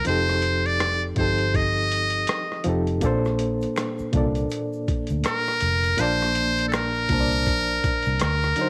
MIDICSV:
0, 0, Header, 1, 6, 480
1, 0, Start_track
1, 0, Key_signature, -2, "major"
1, 0, Tempo, 740741
1, 38, Time_signature, 4, 2, 24, 8
1, 5633, End_track
2, 0, Start_track
2, 0, Title_t, "Muted trumpet"
2, 0, Program_c, 0, 59
2, 47, Note_on_c, 0, 72, 92
2, 429, Note_on_c, 0, 74, 93
2, 439, Note_off_c, 0, 72, 0
2, 668, Note_off_c, 0, 74, 0
2, 768, Note_on_c, 0, 72, 81
2, 1010, Note_on_c, 0, 75, 95
2, 1019, Note_off_c, 0, 72, 0
2, 1724, Note_off_c, 0, 75, 0
2, 3406, Note_on_c, 0, 70, 91
2, 3888, Note_on_c, 0, 72, 109
2, 3897, Note_off_c, 0, 70, 0
2, 4327, Note_off_c, 0, 72, 0
2, 4330, Note_on_c, 0, 69, 60
2, 4366, Note_on_c, 0, 70, 98
2, 4376, Note_off_c, 0, 69, 0
2, 5322, Note_off_c, 0, 70, 0
2, 5333, Note_on_c, 0, 70, 87
2, 5633, Note_off_c, 0, 70, 0
2, 5633, End_track
3, 0, Start_track
3, 0, Title_t, "Reed electric piano"
3, 0, Program_c, 1, 4
3, 0, Control_c, 1, 64, 127
3, 31, Note_on_c, 1, 53, 77
3, 39, Note_on_c, 1, 60, 66
3, 46, Control_c, 1, 64, 0
3, 46, Note_on_c, 1, 63, 69
3, 55, Note_on_c, 1, 67, 70
3, 63, Note_on_c, 1, 69, 85
3, 148, Control_c, 1, 64, 127
3, 721, Note_off_c, 1, 53, 0
3, 725, Note_off_c, 1, 60, 0
3, 729, Note_off_c, 1, 63, 0
3, 733, Note_off_c, 1, 67, 0
3, 737, Note_off_c, 1, 69, 0
3, 749, Note_on_c, 1, 53, 56
3, 759, Note_on_c, 1, 60, 54
3, 767, Note_on_c, 1, 63, 55
3, 775, Note_on_c, 1, 67, 59
3, 782, Note_on_c, 1, 69, 71
3, 1669, Note_off_c, 1, 53, 0
3, 1674, Note_off_c, 1, 60, 0
3, 1678, Note_off_c, 1, 63, 0
3, 1682, Note_off_c, 1, 67, 0
3, 1686, Note_off_c, 1, 69, 0
3, 1712, Note_on_c, 1, 53, 86
3, 1719, Note_on_c, 1, 60, 70
3, 1729, Note_on_c, 1, 63, 73
3, 1735, Note_on_c, 1, 67, 70
3, 1743, Note_on_c, 1, 69, 77
3, 1944, Note_off_c, 1, 53, 0
3, 1947, Note_off_c, 1, 60, 0
3, 1952, Note_off_c, 1, 63, 0
3, 1952, Note_on_c, 1, 46, 94
3, 1955, Note_off_c, 1, 67, 0
3, 1959, Note_off_c, 1, 69, 0
3, 1959, Note_on_c, 1, 58, 84
3, 1966, Control_c, 1, 64, 0
3, 1967, Note_on_c, 1, 62, 89
3, 1975, Note_on_c, 1, 69, 82
3, 1983, Note_on_c, 1, 72, 103
3, 2079, Control_c, 1, 64, 127
3, 2641, Note_off_c, 1, 46, 0
3, 2645, Note_off_c, 1, 58, 0
3, 2649, Note_off_c, 1, 62, 0
3, 2653, Note_off_c, 1, 69, 0
3, 2657, Note_off_c, 1, 72, 0
3, 2673, Note_on_c, 1, 46, 74
3, 2680, Note_on_c, 1, 58, 69
3, 2689, Note_on_c, 1, 62, 69
3, 2695, Note_on_c, 1, 69, 64
3, 2704, Note_on_c, 1, 74, 81
3, 3591, Note_off_c, 1, 46, 0
3, 3594, Note_off_c, 1, 58, 0
3, 3599, Note_off_c, 1, 62, 0
3, 3602, Note_off_c, 1, 69, 0
3, 3606, Note_off_c, 1, 74, 0
3, 3870, Note_on_c, 1, 46, 82
3, 3879, Note_on_c, 1, 58, 78
3, 3887, Note_on_c, 1, 62, 75
3, 3894, Note_on_c, 1, 81, 71
3, 3903, Note_on_c, 1, 74, 88
3, 4561, Note_off_c, 1, 46, 0
3, 4565, Note_off_c, 1, 58, 0
3, 4569, Note_off_c, 1, 62, 0
3, 4573, Note_off_c, 1, 81, 0
3, 4577, Note_off_c, 1, 74, 0
3, 4593, Note_on_c, 1, 46, 59
3, 4602, Note_on_c, 1, 58, 52
3, 4611, Note_on_c, 1, 62, 60
3, 4617, Note_on_c, 1, 81, 53
3, 4626, Note_on_c, 1, 72, 52
3, 4663, Note_off_c, 1, 72, 0
3, 4668, Note_on_c, 1, 74, 68
3, 5315, Note_off_c, 1, 46, 0
3, 5320, Note_off_c, 1, 58, 0
3, 5324, Note_off_c, 1, 62, 0
3, 5327, Note_off_c, 1, 81, 0
3, 5327, Control_c, 1, 64, 0
3, 5353, Note_off_c, 1, 74, 0
3, 5424, Control_c, 1, 64, 127
3, 5549, Note_on_c, 1, 50, 73
3, 5558, Note_on_c, 1, 54, 73
3, 5566, Note_on_c, 1, 63, 73
3, 5574, Note_on_c, 1, 66, 66
3, 5582, Note_on_c, 1, 72, 93
3, 5633, Note_off_c, 1, 50, 0
3, 5633, Note_off_c, 1, 54, 0
3, 5633, Note_off_c, 1, 63, 0
3, 5633, Note_off_c, 1, 66, 0
3, 5633, Note_off_c, 1, 72, 0
3, 5633, End_track
4, 0, Start_track
4, 0, Title_t, "Fingered electric bass"
4, 0, Program_c, 2, 33
4, 45, Note_on_c, 2, 29, 98
4, 735, Note_off_c, 2, 29, 0
4, 760, Note_on_c, 2, 31, 76
4, 1453, Note_off_c, 2, 31, 0
4, 1724, Note_on_c, 2, 29, 75
4, 1960, Note_off_c, 2, 29, 0
4, 1960, Note_on_c, 2, 34, 92
4, 2364, Note_off_c, 2, 34, 0
4, 2683, Note_on_c, 2, 36, 84
4, 2883, Note_off_c, 2, 36, 0
4, 3309, Note_on_c, 2, 38, 85
4, 3386, Note_off_c, 2, 38, 0
4, 3642, Note_on_c, 2, 29, 74
4, 3843, Note_off_c, 2, 29, 0
4, 3883, Note_on_c, 2, 34, 90
4, 4574, Note_off_c, 2, 34, 0
4, 4600, Note_on_c, 2, 36, 96
4, 4842, Note_off_c, 2, 36, 0
4, 4842, Note_on_c, 2, 34, 86
4, 5042, Note_off_c, 2, 34, 0
4, 5229, Note_on_c, 2, 36, 77
4, 5306, Note_off_c, 2, 36, 0
4, 5322, Note_on_c, 2, 38, 94
4, 5523, Note_off_c, 2, 38, 0
4, 5633, End_track
5, 0, Start_track
5, 0, Title_t, "Muted fingered electric bass strokes"
5, 2593, Note_on_c, 9, 29, 38
5, 2658, Note_off_c, 9, 29, 0
5, 3167, Note_on_c, 9, 29, 39
5, 3232, Note_off_c, 9, 29, 0
5, 5633, End_track
6, 0, Start_track
6, 0, Title_t, "Drums"
6, 31, Note_on_c, 9, 42, 89
6, 96, Note_off_c, 9, 42, 0
6, 190, Note_on_c, 9, 37, 31
6, 255, Note_off_c, 9, 37, 0
6, 273, Note_on_c, 9, 42, 64
6, 337, Note_off_c, 9, 42, 0
6, 426, Note_on_c, 9, 42, 27
6, 491, Note_off_c, 9, 42, 0
6, 520, Note_on_c, 9, 42, 73
6, 521, Note_on_c, 9, 37, 92
6, 585, Note_off_c, 9, 42, 0
6, 586, Note_off_c, 9, 37, 0
6, 752, Note_on_c, 9, 42, 61
6, 756, Note_on_c, 9, 36, 83
6, 816, Note_off_c, 9, 42, 0
6, 821, Note_off_c, 9, 36, 0
6, 896, Note_on_c, 9, 42, 30
6, 961, Note_off_c, 9, 42, 0
6, 999, Note_on_c, 9, 36, 82
6, 1002, Note_on_c, 9, 42, 58
6, 1064, Note_off_c, 9, 36, 0
6, 1066, Note_off_c, 9, 42, 0
6, 1241, Note_on_c, 9, 42, 63
6, 1306, Note_off_c, 9, 42, 0
6, 1362, Note_on_c, 9, 42, 31
6, 1427, Note_off_c, 9, 42, 0
6, 1472, Note_on_c, 9, 42, 80
6, 1485, Note_on_c, 9, 37, 110
6, 1537, Note_off_c, 9, 42, 0
6, 1550, Note_off_c, 9, 37, 0
6, 1632, Note_on_c, 9, 37, 30
6, 1697, Note_off_c, 9, 37, 0
6, 1710, Note_on_c, 9, 42, 60
6, 1775, Note_off_c, 9, 42, 0
6, 1860, Note_on_c, 9, 42, 26
6, 1925, Note_off_c, 9, 42, 0
6, 1952, Note_on_c, 9, 42, 80
6, 1956, Note_on_c, 9, 36, 108
6, 1956, Note_on_c, 9, 82, 74
6, 2017, Note_off_c, 9, 42, 0
6, 2020, Note_off_c, 9, 82, 0
6, 2021, Note_off_c, 9, 36, 0
6, 2105, Note_on_c, 9, 82, 41
6, 2112, Note_on_c, 9, 37, 28
6, 2170, Note_off_c, 9, 82, 0
6, 2177, Note_off_c, 9, 37, 0
6, 2196, Note_on_c, 9, 42, 64
6, 2260, Note_off_c, 9, 42, 0
6, 2338, Note_on_c, 9, 82, 40
6, 2351, Note_on_c, 9, 42, 28
6, 2403, Note_off_c, 9, 82, 0
6, 2415, Note_off_c, 9, 42, 0
6, 2439, Note_on_c, 9, 26, 60
6, 2439, Note_on_c, 9, 82, 61
6, 2446, Note_on_c, 9, 42, 76
6, 2447, Note_on_c, 9, 37, 92
6, 2504, Note_off_c, 9, 26, 0
6, 2504, Note_off_c, 9, 82, 0
6, 2511, Note_off_c, 9, 37, 0
6, 2511, Note_off_c, 9, 42, 0
6, 2582, Note_on_c, 9, 82, 47
6, 2647, Note_off_c, 9, 82, 0
6, 2676, Note_on_c, 9, 42, 71
6, 2679, Note_on_c, 9, 36, 84
6, 2740, Note_off_c, 9, 42, 0
6, 2744, Note_off_c, 9, 36, 0
6, 2820, Note_on_c, 9, 42, 31
6, 2825, Note_on_c, 9, 82, 45
6, 2884, Note_off_c, 9, 42, 0
6, 2890, Note_off_c, 9, 82, 0
6, 2915, Note_on_c, 9, 82, 57
6, 2926, Note_on_c, 9, 42, 75
6, 2980, Note_off_c, 9, 82, 0
6, 2991, Note_off_c, 9, 42, 0
6, 3064, Note_on_c, 9, 82, 37
6, 3129, Note_off_c, 9, 82, 0
6, 3158, Note_on_c, 9, 82, 41
6, 3163, Note_on_c, 9, 36, 88
6, 3164, Note_on_c, 9, 42, 58
6, 3222, Note_off_c, 9, 82, 0
6, 3228, Note_off_c, 9, 36, 0
6, 3229, Note_off_c, 9, 42, 0
6, 3285, Note_on_c, 9, 42, 32
6, 3299, Note_on_c, 9, 82, 46
6, 3349, Note_off_c, 9, 42, 0
6, 3364, Note_off_c, 9, 82, 0
6, 3393, Note_on_c, 9, 42, 84
6, 3400, Note_on_c, 9, 26, 55
6, 3400, Note_on_c, 9, 82, 58
6, 3406, Note_on_c, 9, 37, 97
6, 3458, Note_off_c, 9, 42, 0
6, 3465, Note_off_c, 9, 26, 0
6, 3465, Note_off_c, 9, 82, 0
6, 3471, Note_off_c, 9, 37, 0
6, 3542, Note_on_c, 9, 82, 43
6, 3552, Note_on_c, 9, 37, 33
6, 3607, Note_off_c, 9, 82, 0
6, 3617, Note_off_c, 9, 37, 0
6, 3632, Note_on_c, 9, 42, 58
6, 3639, Note_on_c, 9, 82, 42
6, 3697, Note_off_c, 9, 42, 0
6, 3704, Note_off_c, 9, 82, 0
6, 3781, Note_on_c, 9, 42, 29
6, 3787, Note_on_c, 9, 82, 50
6, 3846, Note_off_c, 9, 42, 0
6, 3852, Note_off_c, 9, 82, 0
6, 3873, Note_on_c, 9, 82, 69
6, 3874, Note_on_c, 9, 42, 97
6, 3938, Note_off_c, 9, 82, 0
6, 3939, Note_off_c, 9, 42, 0
6, 4024, Note_on_c, 9, 82, 43
6, 4033, Note_on_c, 9, 37, 29
6, 4089, Note_off_c, 9, 82, 0
6, 4098, Note_off_c, 9, 37, 0
6, 4116, Note_on_c, 9, 42, 60
6, 4181, Note_off_c, 9, 42, 0
6, 4254, Note_on_c, 9, 82, 44
6, 4269, Note_on_c, 9, 42, 31
6, 4319, Note_off_c, 9, 82, 0
6, 4333, Note_off_c, 9, 42, 0
6, 4355, Note_on_c, 9, 26, 66
6, 4355, Note_on_c, 9, 82, 61
6, 4364, Note_on_c, 9, 42, 72
6, 4365, Note_on_c, 9, 37, 100
6, 4420, Note_off_c, 9, 26, 0
6, 4420, Note_off_c, 9, 82, 0
6, 4429, Note_off_c, 9, 42, 0
6, 4430, Note_off_c, 9, 37, 0
6, 4501, Note_on_c, 9, 82, 44
6, 4566, Note_off_c, 9, 82, 0
6, 4594, Note_on_c, 9, 42, 77
6, 4597, Note_on_c, 9, 36, 91
6, 4659, Note_off_c, 9, 42, 0
6, 4661, Note_off_c, 9, 36, 0
6, 4737, Note_on_c, 9, 42, 30
6, 4743, Note_on_c, 9, 82, 45
6, 4802, Note_off_c, 9, 42, 0
6, 4808, Note_off_c, 9, 82, 0
6, 4833, Note_on_c, 9, 82, 57
6, 4839, Note_on_c, 9, 36, 87
6, 4841, Note_on_c, 9, 42, 74
6, 4898, Note_off_c, 9, 82, 0
6, 4903, Note_off_c, 9, 36, 0
6, 4906, Note_off_c, 9, 42, 0
6, 4984, Note_on_c, 9, 82, 36
6, 5049, Note_off_c, 9, 82, 0
6, 5080, Note_on_c, 9, 36, 87
6, 5080, Note_on_c, 9, 42, 61
6, 5080, Note_on_c, 9, 82, 46
6, 5145, Note_off_c, 9, 36, 0
6, 5145, Note_off_c, 9, 42, 0
6, 5145, Note_off_c, 9, 82, 0
6, 5201, Note_on_c, 9, 42, 33
6, 5218, Note_on_c, 9, 82, 43
6, 5265, Note_off_c, 9, 42, 0
6, 5283, Note_off_c, 9, 82, 0
6, 5310, Note_on_c, 9, 42, 85
6, 5321, Note_on_c, 9, 26, 55
6, 5321, Note_on_c, 9, 82, 55
6, 5323, Note_on_c, 9, 37, 99
6, 5375, Note_off_c, 9, 42, 0
6, 5386, Note_off_c, 9, 26, 0
6, 5386, Note_off_c, 9, 82, 0
6, 5388, Note_off_c, 9, 37, 0
6, 5459, Note_on_c, 9, 82, 41
6, 5469, Note_on_c, 9, 37, 33
6, 5524, Note_off_c, 9, 82, 0
6, 5534, Note_off_c, 9, 37, 0
6, 5546, Note_on_c, 9, 42, 59
6, 5557, Note_on_c, 9, 82, 46
6, 5611, Note_off_c, 9, 42, 0
6, 5622, Note_off_c, 9, 82, 0
6, 5633, End_track
0, 0, End_of_file